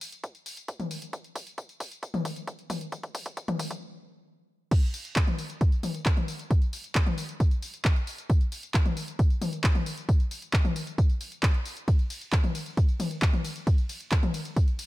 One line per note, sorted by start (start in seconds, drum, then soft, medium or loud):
0.01 open hi-hat medium
0.01 tambourine medium
0.12 closed hi-hat medium
0.12 tambourine soft
0.24 kick loud
0.24 closed hi-hat medium
0.24 tambourine soft
0.35 closed hi-hat soft
0.35 tambourine soft
0.46 open hi-hat loud
0.46 tambourine medium
0.57 closed hi-hat medium
0.57 tambourine soft
0.68 kick loud
0.68 closed hi-hat medium
0.68 tambourine soft
0.80 closed hi-hat soft
0.80 mid tom medium
0.80 tambourine soft
0.91 open hi-hat medium
0.91 tambourine medium
1.02 closed hi-hat medium
1.02 tambourine soft
1.13 kick loud
1.13 closed hi-hat medium
1.13 tambourine soft
1.24 closed hi-hat soft
1.24 tambourine soft
1.36 kick loud
1.36 open hi-hat loud
1.36 tambourine medium
1.47 closed hi-hat medium
1.47 tambourine soft
1.58 kick loud
1.58 closed hi-hat medium
1.58 tambourine soft
1.69 closed hi-hat soft
1.69 tambourine soft
1.80 kick loud
1.80 open hi-hat medium
1.80 tambourine medium
1.92 closed hi-hat medium
1.92 tambourine soft
2.03 kick loud
2.03 closed hi-hat medium
2.03 tambourine soft
2.14 closed hi-hat soft
2.14 mid tom medium
2.14 tambourine soft
2.25 kick loud
2.25 open hi-hat loud
2.25 tambourine medium
2.36 closed hi-hat medium
2.36 tambourine soft
2.47 kick loud
2.47 closed hi-hat medium
2.47 tambourine soft
2.59 closed hi-hat soft
2.59 tambourine soft
2.70 kick loud
2.70 open hi-hat medium
2.70 mid tom medium
2.70 tambourine medium
2.81 closed hi-hat medium
2.81 tambourine soft
2.92 kick loud
2.92 closed hi-hat medium
2.92 tambourine soft
3.03 kick medium
3.03 closed hi-hat soft
3.03 tambourine soft
3.15 kick loud
3.15 open hi-hat loud
3.15 tambourine medium
3.26 kick loud
3.26 closed hi-hat medium
3.26 tambourine soft
3.37 kick loud
3.37 closed hi-hat medium
3.37 tambourine soft
3.48 kick medium
3.48 closed hi-hat soft
3.48 mid tom medium
3.48 tambourine soft
3.59 kick loud
3.59 open hi-hat medium
3.59 tambourine medium
3.71 kick medium
3.71 closed hi-hat medium
3.71 tambourine soft
4.71 kick loud
4.71 closed hi-hat medium
4.71 tambourine soft
4.71 crash loud
4.83 closed hi-hat soft
4.83 tambourine soft
4.94 open hi-hat loud
4.94 tambourine medium
5.05 closed hi-hat medium
5.05 tambourine soft
5.16 kick loud
5.16 clap loud
5.16 closed hi-hat medium
5.16 tambourine soft
5.27 closed hi-hat soft
5.27 mid tom medium
5.27 tambourine soft
5.39 open hi-hat medium
5.39 tambourine medium
5.50 closed hi-hat medium
5.50 tambourine soft
5.61 kick loud
5.61 closed hi-hat medium
5.61 tambourine soft
5.72 closed hi-hat soft
5.72 tambourine soft
5.83 open hi-hat loud
5.83 mid tom medium
5.83 tambourine medium
5.95 closed hi-hat medium
5.95 tambourine soft
6.06 kick loud
6.06 clap loud
6.06 closed hi-hat medium
6.06 tambourine soft
6.17 closed hi-hat soft
6.17 mid tom medium
6.17 tambourine soft
6.28 open hi-hat medium
6.28 tambourine medium
6.39 closed hi-hat medium
6.39 tambourine soft
6.51 kick loud
6.51 closed hi-hat medium
6.51 tambourine soft
6.62 closed hi-hat soft
6.62 tambourine soft
6.73 open hi-hat loud
6.73 tambourine medium
6.84 closed hi-hat medium
6.84 tambourine soft
6.95 kick loud
6.95 clap loud
6.95 closed hi-hat medium
6.95 tambourine soft
7.06 closed hi-hat soft
7.06 mid tom medium
7.06 tambourine soft
7.18 open hi-hat loud
7.18 tambourine medium
7.29 closed hi-hat medium
7.29 tambourine soft
7.40 kick loud
7.40 closed hi-hat medium
7.40 tambourine soft
7.51 closed hi-hat soft
7.51 tambourine soft
7.62 open hi-hat loud
7.62 tambourine medium
7.74 closed hi-hat medium
7.74 tambourine soft
7.85 kick loud
7.85 clap loud
7.85 closed hi-hat medium
7.85 tambourine soft
7.96 closed hi-hat soft
7.96 tambourine soft
8.07 open hi-hat medium
8.07 tambourine medium
8.18 closed hi-hat medium
8.18 tambourine soft
8.30 kick loud
8.30 closed hi-hat medium
8.30 tambourine soft
8.41 closed hi-hat soft
8.41 tambourine soft
8.52 open hi-hat loud
8.52 tambourine medium
8.63 closed hi-hat medium
8.63 tambourine soft
8.74 kick loud
8.74 clap loud
8.74 closed hi-hat medium
8.74 tambourine soft
8.86 closed hi-hat soft
8.86 mid tom medium
8.86 tambourine soft
8.97 open hi-hat loud
8.97 tambourine medium
9.08 closed hi-hat medium
9.08 tambourine soft
9.19 kick loud
9.19 closed hi-hat medium
9.19 tambourine soft
9.30 closed hi-hat soft
9.30 tambourine soft
9.42 open hi-hat loud
9.42 mid tom medium
9.42 tambourine medium
9.53 closed hi-hat medium
9.53 tambourine soft
9.64 kick loud
9.64 clap loud
9.64 closed hi-hat medium
9.64 tambourine soft
9.75 closed hi-hat soft
9.75 mid tom medium
9.75 tambourine soft
9.86 open hi-hat loud
9.86 tambourine medium
9.97 closed hi-hat medium
9.97 tambourine soft
10.09 kick loud
10.09 closed hi-hat medium
10.09 tambourine soft
10.20 closed hi-hat soft
10.20 tambourine soft
10.31 open hi-hat loud
10.31 tambourine medium
10.42 closed hi-hat soft
10.42 tambourine soft
10.53 kick loud
10.53 clap loud
10.53 closed hi-hat medium
10.53 tambourine soft
10.65 closed hi-hat soft
10.65 mid tom medium
10.65 tambourine soft
10.76 open hi-hat loud
10.76 tambourine medium
10.87 closed hi-hat medium
10.87 tambourine soft
10.98 kick loud
10.98 closed hi-hat medium
10.98 tambourine soft
11.10 closed hi-hat soft
11.10 tambourine soft
11.21 open hi-hat loud
11.21 tambourine medium
11.32 closed hi-hat medium
11.32 tambourine soft
11.43 kick loud
11.43 clap loud
11.43 closed hi-hat medium
11.43 tambourine soft
11.54 closed hi-hat soft
11.54 tambourine soft
11.65 open hi-hat loud
11.65 tambourine medium
11.77 closed hi-hat soft
11.77 tambourine soft
11.88 kick loud
11.88 closed hi-hat medium
11.88 ride medium
11.88 tambourine soft
11.99 closed hi-hat soft
11.99 tambourine soft
12.10 open hi-hat loud
12.10 ride medium
12.10 tambourine medium
12.21 closed hi-hat medium
12.21 tambourine soft
12.33 kick loud
12.33 clap loud
12.33 closed hi-hat medium
12.33 ride medium
12.33 tambourine soft
12.44 closed hi-hat soft
12.44 mid tom medium
12.44 tambourine soft
12.55 open hi-hat loud
12.55 ride medium
12.55 tambourine medium
12.66 closed hi-hat soft
12.66 tambourine soft
12.77 kick loud
12.77 closed hi-hat medium
12.77 ride medium
12.77 tambourine soft
12.89 closed hi-hat soft
12.89 tambourine soft
13.00 open hi-hat loud
13.00 mid tom medium
13.00 ride medium
13.00 tambourine medium
13.11 closed hi-hat medium
13.11 tambourine soft
13.22 kick loud
13.22 clap loud
13.22 closed hi-hat medium
13.22 ride medium
13.22 tambourine soft
13.33 closed hi-hat soft
13.33 mid tom medium
13.33 tambourine soft
13.45 open hi-hat medium
13.45 ride medium
13.45 tambourine medium
13.56 closed hi-hat soft
13.56 tambourine soft
13.67 kick loud
13.67 closed hi-hat medium
13.67 ride medium
13.67 tambourine soft
13.78 closed hi-hat soft
13.78 tambourine soft
13.89 open hi-hat loud
13.89 ride medium
13.89 tambourine medium
14.01 closed hi-hat medium
14.01 tambourine soft
14.12 kick loud
14.12 clap loud
14.12 closed hi-hat medium
14.12 ride medium
14.12 tambourine soft
14.23 closed hi-hat soft
14.23 mid tom medium
14.23 tambourine soft
14.34 open hi-hat medium
14.34 ride medium
14.34 tambourine medium
14.45 closed hi-hat medium
14.45 tambourine soft
14.56 kick loud
14.56 closed hi-hat medium
14.56 ride medium
14.56 tambourine soft
14.68 closed hi-hat soft
14.68 tambourine soft
14.79 open hi-hat loud
14.79 ride medium
14.79 tambourine medium